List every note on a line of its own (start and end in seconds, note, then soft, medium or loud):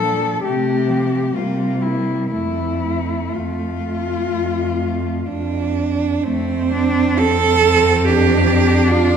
0.00 0.33 A#2 soft
0.00 0.42 F3 soft
0.00 0.43 D4 soft
0.00 0.44 A4 medium
0.43 1.24 C3 medium
0.43 0.89 A3 soft
0.43 0.87 A3 soft
0.43 1.37 G4 medium
0.87 1.33 F3 soft
0.87 1.33 A3 soft
1.34 2.20 C3 soft
1.34 2.33 G3 soft
1.34 1.81 A#3 soft
1.34 1.83 F4 soft
1.82 2.31 A#3 soft
1.82 2.31 E4 soft
2.31 3.21 F2 medium
2.31 5.76 A3 soft
2.31 2.81 A3 soft
2.31 3.35 E4 medium
2.82 3.80 A3 soft
3.32 4.20 F2 soft
3.32 5.77 F4 medium
3.82 4.77 A3 soft
4.30 5.16 F2 soft
4.80 5.27 A3 soft
5.27 6.13 F2 soft
5.27 6.25 D4 medium
6.23 9.17 F2 medium
6.23 6.68 A3 medium
6.23 7.20 C4 medium
6.73 7.21 D4 medium
7.19 7.63 C4 medium
7.19 8.07 A4 loud
7.64 8.08 C4 medium
8.05 8.92 C4 medium
8.05 9.17 D4 medium
8.05 8.91 G4 medium
8.90 9.17 D4 medium
8.90 9.17 F4 medium